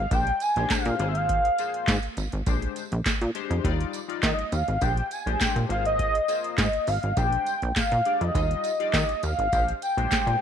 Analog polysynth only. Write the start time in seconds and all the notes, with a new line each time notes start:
0.12 G#3 D4 G4 C5
0.57 G#3 D4 G4 C5
1.00 A#3 F4 G#4 C5
1.59 A#3 F4 G#4 C5
2.47 G#3 D4 G4 C5
3.35 G#3 D4 G4 C5
3.64 G3 D#4 F4 D5
4.08 G3 D#4 F4 D5
4.81 G#3 D4 G4 C5
5.26 G#3 D4 G4 C5
5.69 A#3 F4 G#4 C5
6.28 A#3 F4 G#4 C5
7.17 G#3 D4 G4 C5
8.05 G#3 D4 G4 D5
8.35 G3 D#4 F4 D#5
8.80 G3 D#4 F4 D5
9.53 G#3 D4 G4 C5
9.98 G#3 D4 G4 C5